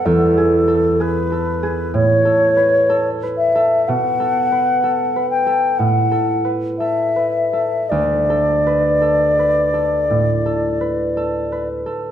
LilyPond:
<<
  \new Staff \with { instrumentName = "Flute" } { \time 4/4 \key d \major \tempo 4 = 62 a'4 b'4 cis''4. e''8 | fis''4. g''8 fis''8 r8 e''4 | d''2.~ d''8 r8 | }
  \new Staff \with { instrumentName = "Harp" } { \time 4/4 \key d \major \tuplet 3/2 { e,8 gis'8 a'8 gis'8 a'8 gis'8 a,8 a'8 b'8 a'8 b'8 a'8 } | \tuplet 3/2 { b,8 a'8 b'8 a'8 b'8 a'8 a,8 a'8 b'8 a'8 b'8 a'8 } | \tuplet 3/2 { d,8 a'8 b'8 a'8 b'8 a'8 a,8 a'8 b'8 a'8 b'8 a'8 } | }
>>